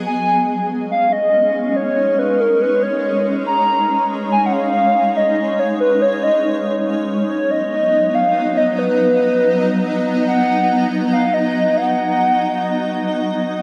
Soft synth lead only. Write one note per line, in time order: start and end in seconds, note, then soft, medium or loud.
0.06 0.66 G#5 loud
0.91 1.14 F5 loud
1.12 1.78 D#5 loud
1.76 2.20 C#5 loud
2.19 2.42 B4 medium
2.40 2.63 A#4 medium
2.61 2.84 B4 loud
2.82 3.25 C#5 loud
3.46 4.06 A#5 loud
4.32 4.47 G#5 loud
4.46 4.54 F#5 medium
4.53 5.18 F5 loud
5.17 5.61 D#5 loud
5.59 5.80 C#5 medium
5.80 6.03 B4 medium
6.02 6.25 C#5 loud
6.23 6.66 D#5 medium
7.30 7.52 C#5 medium
7.51 8.16 D#5 loud
8.15 8.59 F5 loud
8.57 8.80 D#5 loud
8.79 10.06 B4 loud
10.27 10.87 F#5 loud
11.13 11.35 F5 loud
11.34 11.78 D#5 loud
11.76 13.25 F#5 loud